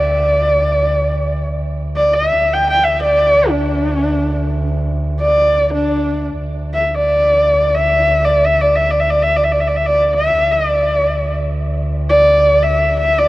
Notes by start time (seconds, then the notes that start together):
Already playing: D2 D5
1.96 D5
2.13 E5
2.38 D2
2.54 G5
2.70 G5
2.84 E5
3.03 D5
3.49 D4
5.21 D5
5.75 D4
6.38 D2
6.74 E5
6.87 E5
6.94 D5
7.75 E5
8.25 D5
8.45 E5
8.61 D5
8.75 E5
8.90 D5
9.00 E5
9.10 D5
9.22 E5
9.37 D5
9.44 E5
9.52 D5
9.60 E5
9.68 D5
9.76 E5
9.86 D5
10.14 E5
10.37 D2
10.52 D5
12.09 D5
12.62 E5
13.00 E5
13.18 D5